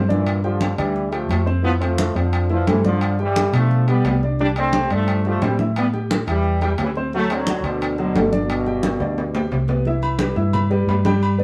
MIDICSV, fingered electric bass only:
0, 0, Header, 1, 2, 480
1, 0, Start_track
1, 0, Key_signature, 0, "major"
1, 0, Tempo, 342270
1, 383, Time_signature, 4, 2, 24, 8
1, 16041, End_track
2, 0, Start_track
2, 0, Title_t, "Fingered electric bass"
2, 0, Program_c, 0, 33
2, 0, Note_on_c, 0, 43, 73
2, 1014, Note_off_c, 0, 43, 0
2, 1096, Note_on_c, 0, 38, 85
2, 1773, Note_off_c, 0, 38, 0
2, 1812, Note_on_c, 0, 41, 84
2, 2946, Note_off_c, 0, 41, 0
2, 3019, Note_on_c, 0, 41, 90
2, 3699, Note_off_c, 0, 41, 0
2, 3752, Note_on_c, 0, 43, 77
2, 4878, Note_off_c, 0, 43, 0
2, 4950, Note_on_c, 0, 47, 81
2, 5626, Note_off_c, 0, 47, 0
2, 5669, Note_on_c, 0, 36, 77
2, 6797, Note_off_c, 0, 36, 0
2, 6886, Note_on_c, 0, 43, 86
2, 7555, Note_off_c, 0, 43, 0
2, 7600, Note_on_c, 0, 45, 86
2, 8722, Note_off_c, 0, 45, 0
2, 8798, Note_on_c, 0, 40, 87
2, 9470, Note_off_c, 0, 40, 0
2, 9518, Note_on_c, 0, 38, 84
2, 10638, Note_off_c, 0, 38, 0
2, 10705, Note_on_c, 0, 38, 86
2, 11380, Note_off_c, 0, 38, 0
2, 11436, Note_on_c, 0, 31, 72
2, 12554, Note_off_c, 0, 31, 0
2, 12626, Note_on_c, 0, 38, 93
2, 13297, Note_off_c, 0, 38, 0
2, 13345, Note_on_c, 0, 36, 76
2, 14462, Note_off_c, 0, 36, 0
2, 14532, Note_on_c, 0, 43, 89
2, 15204, Note_off_c, 0, 43, 0
2, 15246, Note_on_c, 0, 43, 89
2, 16041, Note_off_c, 0, 43, 0
2, 16041, End_track
0, 0, End_of_file